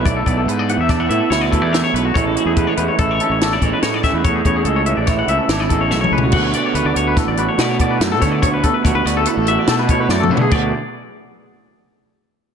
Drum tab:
CC |------------------------------|------------------------------|------------------------------|x-----------------------------|
HH |x--x--x--x--x--x--x--x--x--x--|x--x--x--x--x--x--x--x--x--x--|x--x--x--x--x--x--x--x--------|---x--x--x--x--x--x--x--x--x--|
SD |------------o-----o-----o-----|------------------o-----o--o--|------------o-----o-----o-----|------------o-----o-----o--o--|
T2 |------------------------------|------------------------------|--------------------------o---|------------------------------|
FT |------------------------------|------------------------------|----------------------------o-|------------------------------|
BD |o--o--------o--------o--------|o-----o-----o--------o-----o--|o--o--------o--------o--------|o-----------o--------o-----o--|

CC |------------------------------|x-----------------------------|
HH |x--x--x--x--x--x--x--x--------|------------------------------|
SD |---------o--------o-----o-----|------------------------------|
T2 |--------------------------o---|------------------------------|
FT |----------------------------o-|------------------------------|
BD |o--o--o--------------o--------|o-----------------------------|